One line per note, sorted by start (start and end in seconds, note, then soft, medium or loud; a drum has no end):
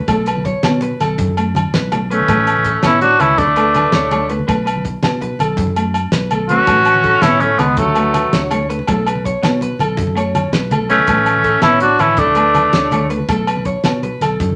0.08 0.54 B1 medium
0.08 0.29 A3 medium
0.08 0.25 A4 medium
0.08 kick medium
0.08 closed hi-hat medium
0.08 muted conga medium
0.08 high conga medium
0.08 low agogo medium
0.26 0.44 B4 medium
0.26 closed hi-hat soft
0.26 low agogo medium
0.36 low conga medium
0.45 0.80 C#5 medium
0.45 kick medium
0.45 closed hi-hat soft
0.45 high conga medium
0.45 low conga soft
0.63 0.94 B2 medium
0.63 0.85 B3 medium
0.63 snare medium
0.63 closed hi-hat medium
0.63 muted conga medium
0.63 low conga medium
0.63 low agogo medium
0.81 0.99 B4 medium
0.81 closed hi-hat soft
0.81 high conga medium
0.91 low conga soft
1.00 1.16 B1 medium
1.00 1.35 A4 medium
1.00 snare soft
1.00 closed hi-hat soft
1.00 low conga medium
1.00 low agogo medium
1.18 1.64 F#2 medium
1.18 kick medium
1.18 closed hi-hat medium
1.18 muted conga medium
1.18 high conga medium
1.27 low conga medium
1.37 1.59 A3 medium
1.37 closed hi-hat soft
1.37 low agogo medium
1.46 low conga soft
1.55 closed hi-hat soft
1.55 high conga medium
1.55 low conga medium
1.55 low agogo medium
1.65 low conga soft
1.74 2.20 B1 loud
1.74 1.91 B4 medium
1.74 snare medium
1.74 closed hi-hat medium
1.74 muted conga medium
1.92 2.02 A3 medium
1.92 closed hi-hat soft
1.92 high conga medium
1.92 low conga medium
1.92 low agogo medium
2.11 2.22 A3 medium
2.11 2.81 A3 medium
2.11 2.80 C#4 medium
2.11 2.27 B4 medium
2.11 closed hi-hat soft
2.20 low conga medium
2.28 2.75 A1 loud
2.28 2.50 A3 medium
2.28 2.63 B4 medium
2.28 kick medium
2.28 closed hi-hat medium
2.28 muted conga medium
2.28 high conga medium
2.28 low agogo medium
2.47 closed hi-hat medium
2.47 low agogo medium
2.57 low conga medium
2.65 2.82 A4 medium
2.65 kick medium
2.65 closed hi-hat medium
2.65 high conga medium
2.65 low conga soft
2.83 3.14 A2 medium
2.83 3.05 B3 medium
2.83 3.01 C#4 medium
2.83 3.01 E4 loud
2.83 3.18 C#5 medium
2.83 snare medium
2.83 closed hi-hat medium
2.83 muted conga medium
2.83 low conga medium
2.83 low agogo medium
3.01 3.23 D4 medium
3.01 3.22 F#4 medium
3.01 closed hi-hat soft
3.01 high conga medium
3.11 low conga soft
3.19 3.35 C#2 medium
3.19 3.41 C#4 medium
3.19 3.40 E4 medium
3.19 3.37 B4 medium
3.19 closed hi-hat soft
3.19 low conga medium
3.19 low agogo medium
3.37 3.84 D2 medium
3.37 4.30 A3 medium
3.37 4.30 D4 medium
3.37 3.55 A4 medium
3.37 kick medium
3.37 closed hi-hat medium
3.37 muted conga medium
3.37 high conga medium
3.47 low conga medium
3.56 3.78 A3 medium
3.56 3.74 B4 medium
3.56 closed hi-hat soft
3.56 low agogo medium
3.66 low conga soft
3.74 3.93 B4 medium
3.74 closed hi-hat soft
3.74 high conga medium
3.74 low conga medium
3.74 low agogo medium
3.84 low conga soft
3.92 4.40 D2 loud
3.92 4.11 C#5 medium
3.92 snare medium
3.92 closed hi-hat medium
3.92 muted conga medium
4.11 4.23 A3 medium
4.11 4.29 C#5 medium
4.11 closed hi-hat soft
4.11 high conga medium
4.11 low conga medium
4.11 low agogo medium
4.29 4.41 A3 medium
4.29 4.47 B4 medium
4.29 closed hi-hat soft
4.39 low conga medium
4.48 4.94 B1 medium
4.48 4.69 A3 medium
4.48 4.65 B4 medium
4.48 kick medium
4.48 closed hi-hat medium
4.48 muted conga medium
4.48 high conga medium
4.48 low conga soft
4.48 low agogo medium
4.66 4.84 B4 medium
4.66 closed hi-hat soft
4.66 low agogo medium
4.76 low conga medium
4.85 kick medium
4.85 closed hi-hat soft
4.85 high conga medium
5.03 5.34 B2 medium
5.03 5.25 B3 medium
5.03 snare medium
5.03 closed hi-hat medium
5.03 muted conga medium
5.03 low conga medium
5.03 low agogo medium
5.21 5.39 B4 medium
5.21 closed hi-hat soft
5.21 high conga medium
5.21 low conga soft
5.30 low conga soft
5.39 5.56 B1 medium
5.39 5.75 A4 medium
5.39 closed hi-hat soft
5.39 low conga medium
5.39 low agogo medium
5.57 6.05 F#2 medium
5.57 kick medium
5.57 closed hi-hat medium
5.57 muted conga medium
5.57 high conga medium
5.57 low conga soft
5.67 low conga medium
5.76 5.98 A3 medium
5.76 closed hi-hat medium
5.76 low conga soft
5.76 low agogo medium
5.94 closed hi-hat soft
5.94 high conga soft
5.94 low agogo medium
6.12 6.59 B1 medium
6.12 6.31 B4 medium
6.12 snare medium
6.12 closed hi-hat medium
6.12 high conga medium
6.31 6.42 A3 medium
6.31 6.49 A4 medium
6.31 closed hi-hat soft
6.31 low conga medium
6.31 low agogo medium
6.49 6.61 A3 medium
6.49 7.24 C#4 medium
6.49 7.24 F#4 loud
6.49 6.67 B4 medium
6.49 closed hi-hat soft
6.49 low conga medium
6.67 7.14 A1 loud
6.67 6.90 A3 medium
6.67 7.03 B4 medium
6.67 kick medium
6.67 closed hi-hat medium
6.67 muted conga medium
6.67 high conga medium
6.67 low agogo medium
6.85 closed hi-hat soft
6.85 low agogo medium
6.95 low conga medium
7.04 7.22 A4 medium
7.04 kick medium
7.04 closed hi-hat soft
7.04 high conga medium
7.04 low conga soft
7.22 7.53 A2 medium
7.22 7.44 B3 medium
7.22 7.44 C#4 medium
7.22 7.42 E4 medium
7.22 7.58 C#5 medium
7.22 snare medium
7.22 closed hi-hat medium
7.22 muted conga medium
7.22 low conga medium
7.22 low agogo medium
7.40 7.62 A3 medium
7.40 7.60 C#4 medium
7.40 closed hi-hat soft
7.40 high conga medium
7.51 low conga soft
7.59 7.75 C#2 medium
7.59 7.79 G#3 medium
7.59 7.78 B3 medium
7.59 7.77 B4 medium
7.59 snare soft
7.59 closed hi-hat soft
7.59 low conga medium
7.59 low agogo medium
7.77 8.24 D2 medium
7.77 8.49 F#3 medium
7.77 8.48 A3 medium
7.77 7.95 A4 medium
7.77 kick medium
7.77 closed hi-hat medium
7.77 muted conga medium
7.77 high conga medium
7.87 low conga medium
7.95 8.17 A3 medium
7.95 8.12 B4 medium
7.95 closed hi-hat soft
7.95 low agogo medium
8.05 low conga soft
8.14 8.32 B4 medium
8.14 closed hi-hat soft
8.14 high conga medium
8.14 low conga medium
8.14 low agogo medium
8.24 low conga soft
8.33 8.79 D2 medium
8.33 8.50 C#5 medium
8.33 snare medium
8.33 closed hi-hat medium
8.33 muted conga medium
8.51 8.62 A3 medium
8.51 8.69 C#5 medium
8.51 closed hi-hat medium
8.51 high conga medium
8.51 low conga medium
8.51 low agogo medium
8.70 8.81 A3 medium
8.70 8.87 B4 medium
8.70 closed hi-hat medium
8.79 low conga medium
8.87 9.35 B1 medium
8.87 9.09 A3 medium
8.87 9.06 A4 medium
8.87 kick medium
8.87 closed hi-hat medium
8.87 muted conga medium
8.87 high conga medium
8.87 low agogo medium
9.07 9.25 B4 medium
9.07 closed hi-hat soft
9.07 low agogo medium
9.15 low conga medium
9.25 9.60 C#5 medium
9.25 kick medium
9.25 closed hi-hat medium
9.25 high conga medium
9.25 low conga soft
9.43 9.74 B2 medium
9.43 9.64 B3 medium
9.43 snare medium
9.43 closed hi-hat medium
9.43 muted conga medium
9.43 low conga medium
9.43 low agogo medium
9.61 9.80 B4 medium
9.61 closed hi-hat medium
9.61 high conga medium
9.71 low conga soft
9.79 9.95 B1 medium
9.79 10.16 A4 medium
9.79 closed hi-hat medium
9.79 low conga medium
9.79 low agogo medium
9.97 10.45 F#2 medium
9.97 kick medium
9.97 closed hi-hat medium
9.97 muted conga medium
9.97 high conga medium
10.07 low conga medium
10.15 10.37 A3 medium
10.15 10.52 C#5 medium
10.15 closed hi-hat soft
10.15 low agogo medium
10.35 closed hi-hat soft
10.35 high conga medium
10.35 low conga medium
10.35 low agogo medium
10.44 low conga soft
10.52 10.99 B1 loud
10.52 10.71 B4 medium
10.52 snare medium
10.52 closed hi-hat medium
10.52 muted conga medium
10.71 10.82 A3 medium
10.71 10.90 A4 medium
10.71 closed hi-hat soft
10.71 high conga medium
10.71 low conga medium
10.71 low agogo medium
10.90 11.01 A3 medium
10.90 11.60 A3 medium
10.90 11.60 C#4 medium
10.90 11.07 B4 medium
10.90 closed hi-hat soft
10.98 low conga medium
11.07 11.54 A1 medium
11.07 11.30 A3 medium
11.07 11.43 B4 medium
11.07 kick medium
11.07 closed hi-hat medium
11.07 muted conga medium
11.07 high conga medium
11.07 low agogo medium
11.26 closed hi-hat soft
11.26 low agogo medium
11.35 low conga medium
11.44 11.62 A4 medium
11.44 kick medium
11.44 closed hi-hat soft
11.44 low conga soft
11.62 11.94 A2 medium
11.62 11.84 B3 medium
11.62 11.81 C#4 medium
11.62 11.80 E4 loud
11.62 11.98 C#5 medium
11.62 snare medium
11.62 closed hi-hat medium
11.62 muted conga medium
11.62 low conga medium
11.62 low agogo medium
11.80 12.02 D4 medium
11.80 12.02 F#4 medium
11.80 closed hi-hat medium
11.80 high conga medium
11.90 low conga soft
11.99 12.15 A1 medium
11.99 12.19 C#4 medium
11.99 12.21 E4 medium
11.99 12.17 B4 medium
11.99 closed hi-hat soft
11.99 low conga medium
11.99 low agogo medium
12.17 12.65 D2 medium
12.17 13.10 A3 medium
12.17 13.11 D4 medium
12.17 12.36 A4 medium
12.17 kick medium
12.17 closed hi-hat medium
12.17 muted conga medium
12.17 high conga medium
12.27 low conga medium
12.35 12.57 A3 medium
12.35 12.53 B4 medium
12.35 closed hi-hat soft
12.35 low agogo medium
12.45 low conga soft
12.54 12.73 B4 medium
12.54 closed hi-hat soft
12.54 high conga medium
12.54 low conga medium
12.54 low agogo medium
12.65 low conga soft
12.73 13.20 D2 medium
12.73 12.91 C#5 medium
12.73 snare medium
12.73 closed hi-hat medium
12.73 muted conga medium
12.91 13.03 A3 medium
12.91 13.10 C#5 medium
12.91 closed hi-hat medium
12.91 high conga medium
12.91 low conga medium
12.91 low agogo medium
13.10 13.21 A3 medium
13.10 13.28 B4 medium
13.10 closed hi-hat soft
13.19 low conga medium
13.28 13.75 B1 medium
13.28 13.50 A3 medium
13.28 13.47 A4 medium
13.28 kick medium
13.28 closed hi-hat medium
13.28 muted conga medium
13.28 high conga medium
13.28 low conga soft
13.28 low agogo medium
13.47 13.65 B4 medium
13.47 closed hi-hat soft
13.47 low agogo medium
13.56 low conga medium
13.65 14.01 C#5 medium
13.65 kick medium
13.65 closed hi-hat soft
13.65 high conga medium
13.65 low conga soft
13.84 14.15 B2 medium
13.84 14.06 B3 medium
13.84 snare medium
13.84 closed hi-hat medium
13.84 muted conga medium
13.84 low conga medium
13.84 low agogo medium
13.94 low conga soft
14.03 14.21 B4 medium
14.03 closed hi-hat soft
14.03 high conga medium
14.03 low conga soft
14.21 14.36 B1 medium
14.21 14.55 A4 medium
14.21 snare soft
14.21 closed hi-hat soft
14.21 low conga medium
14.21 low agogo medium
14.40 14.55 F#2 medium
14.40 kick medium
14.40 closed hi-hat medium
14.40 muted conga medium
14.40 high conga medium
14.50 low conga medium